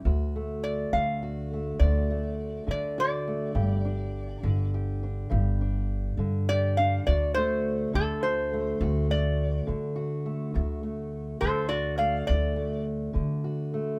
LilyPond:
<<
  \new Staff \with { instrumentName = "Resonator guitar played with a steel bar" } { \time 12/8 \key d \major \tempo 4. = 69 r4 d''8 f''4. d''4. d''8 d''4~ | d''2 r2. d''8 f''8 | d''8 c''4 a'8 c''4. d''4 r4. | r4. <a' c''>8 <fis' d''>8 <d'' f''>8 d''4 r2 | }
  \new Staff \with { instrumentName = "Steel-string acoustic guitar" } { \time 12/8 \key d \major << { fis'8 a4. fis'8 a8 fis'8 a4. fis'8 a8 | g'8 d'4. g'8 d'8 g'8 d'4. g'8 d'8 | fis'8 a4. fis'8 a8 fis'8 a4. fis'8 a8 | fis'8 a4. fis'8 a8 fis'8 a4. fis'8 a8 | } \\ { d,4. d4. d,4. d4. | g,4. d4. g,4. d4. | d,4. d4. d,4. d4. | d,4. d4. d,4. d4. | } >> }
  \new Staff \with { instrumentName = "Upright bass" } { \clef bass \time 12/8 \key d \major d,4. d,4. d,4. d4. | g,,4. g,,4. g,,4. g,4. | d,4. d,4. d,4. d4. | d,4. d,4. d,4. d4. | }
>>